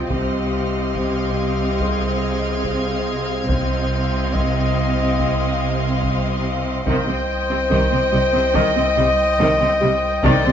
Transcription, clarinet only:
Already playing: F4
0.10 G4
1.81 G#4
3.47 C5
4.34 D#5
6.87 C5
8.55 D#5
10.25 D5

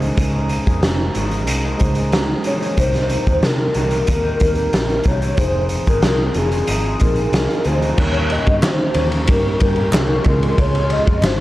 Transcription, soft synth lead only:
2.47 C#5
2.79 C5
3.45 A#4
3.75 A#4
5.08 C#5
5.38 C5
5.89 A#4
6.37 G#4
7.02 A#4
7.35 A#4
7.66 C5
7.99 C#5
8.32 D#5
8.65 C5
9.28 A#4
9.62 A#4
10.60 C#5
10.92 D#5
11.25 C5

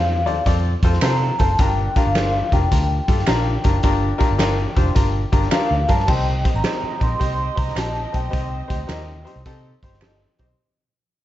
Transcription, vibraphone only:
Already playing: F5
1.02 A#5
1.39 A5
1.60 G5
1.97 F5
2.53 G5
5.52 F5
5.89 A5
6.09 G5
6.56 A#5
7.03 C6
7.21 C6
7.58 A#5
7.78 A5
8.15 G5

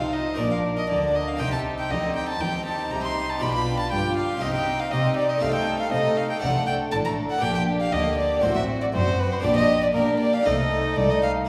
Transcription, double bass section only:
Already playing: C2
0.39 A#1
0.90 D2
1.40 C2
1.91 D2
2.41 D#2
2.91 C2
3.41 B1
3.92 G1
4.42 C2
4.92 C3
5.42 C2
5.92 C3
6.42 C2
6.92 A1
7.42 A#1
7.93 D2
8.43 A1
8.94 F#1
9.44 A#1
9.94 A#2
10.45 C2
10.97 C2

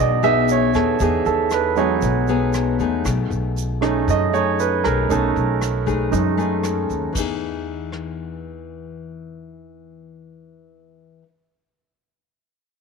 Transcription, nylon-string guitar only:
Already playing: B2 B3 D#4 G#4
0.23 B3 D#4 G#4
0.74 B3 D#4 G#4
1.00 E3 B3 D#4 G#4
1.77 B3 D#4 G#4
2.03 B2
2.29 B3 D#4 G#4
2.80 A3 D#4 G#4
3.05 B2
3.82 A3 D#4 G#4
4.08 F#2
4.33 A3 D#4 G#4
4.84 A3 D#4 G#4
5.09 B2 A3 D#4 G#4
5.86 A3 D#4 G#4
6.12 F#2
6.37 A3 D#4 G#4
7.13 E3 B3
7.17 D#4 G#4

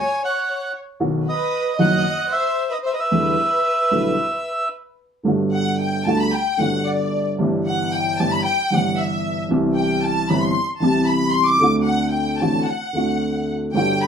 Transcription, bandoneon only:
0.00 G#5
0.25 F#5
1.29 D#5
1.80 F#5
2.32 E5
2.72 D#5
2.86 E5
2.94 D#5
3.00 E5

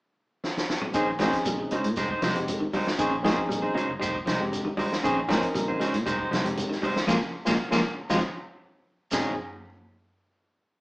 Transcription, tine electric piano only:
0.93 C4 C#4 D#4 G#4
1.20 C4 C#4 D#4 G#4
2.34 G#3 C4 D#4 G4
2.98 C4 C#4 D#4 G#4
3.23 C4 C#4 D#4 G#4
4.40 G#3 C4 D#4 G4
5.03 C4 C#4 D#4 G#4
5.28 C4 C#4 D#4 A#4
6.43 G#3 C4 D#4 G4
7.08 A#3 C#4 F4
7.45 A#3 C#4 F4
7.71 A#3 C#4 F4
8.10 C4 D#4 F4
9.13 C4 C#4 D#4 G#4

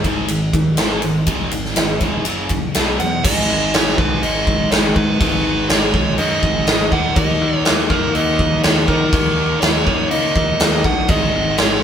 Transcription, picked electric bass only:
0.04 G#1
0.29 G#1
0.53 D#2
0.78 G#1
1.03 G#1
1.27 G#1
1.52 G#1
1.76 G#1
2.01 E1
2.25 F#1
2.50 F#1
2.75 B1
3.00 E2
3.25 G#1
3.49 G#1
3.73 G#1
3.98 B1
4.22 G#1
4.71 G#1
4.96 G#2
5.21 G#1
5.68 G#1
5.94 B1
6.18 F#2
6.43 G#1
6.67 G#1
6.92 D#2
7.16 D#2
7.42 D#2
7.66 D#2
7.91 F#2
8.16 D#2
8.65 D#2
8.88 D#3
9.13 D#2
9.62 D#2
9.87 F#2
10.10 C#3
10.36 D#2
10.60 D#2
10.85 A#1
11.09 G#1
11.33 G#1
11.58 G#1

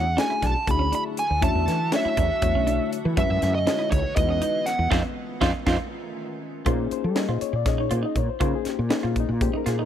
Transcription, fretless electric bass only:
Already playing: E2
0.43 B1
0.55 muted fretless electric bass stroke
0.68 D2
1.30 D2
1.42 E2
1.55 E2
1.68 E3
2.05 muted fretless electric bass stroke
2.18 E2
2.43 E2
2.55 B1
3.05 E3
3.17 F#2
3.30 F#2
3.42 F#2
3.92 C#2
4.06 muted fretless electric bass stroke
4.17 E2
4.79 E2
4.91 F2
5.42 F2
5.66 F2
6.66 A#2
6.91 muted fretless electric bass stroke
7.04 G3
7.28 A#2
7.42 muted fretless electric bass stroke
7.53 A#2
7.91 A#2
8.16 A#2
8.41 C#3
8.66 muted fretless electric bass stroke
8.79 A#2
9.04 A#2
9.29 A#2
9.54 muted fretless electric bass stroke
9.66 A#2

